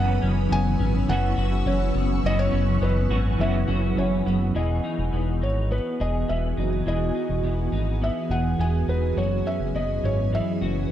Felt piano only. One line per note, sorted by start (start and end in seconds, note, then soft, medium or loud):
0.00 0.54 F#5 loud
0.52 1.11 G#5 loud
1.09 1.69 F#5 loud
1.67 2.26 C#5 medium
2.26 2.39 D#5 loud
2.39 2.83 C#5 loud
2.83 3.42 B4 medium
3.41 4.23 E5 medium
3.98 4.57 C#5 medium
4.56 5.45 D#5 medium
5.43 5.72 C#5 medium
5.72 6.01 B4 medium
6.01 6.30 D#5 medium
6.29 6.69 E5 medium
6.88 8.06 D#5 medium
8.04 8.32 E5 medium
8.31 8.60 F#5 medium
8.61 8.89 G#5 medium
8.89 9.18 B4 medium
9.18 9.47 C#5 medium
9.47 9.76 E5 medium
9.76 10.05 D#5 medium
10.05 10.34 C#5 medium
10.35 10.87 E5 medium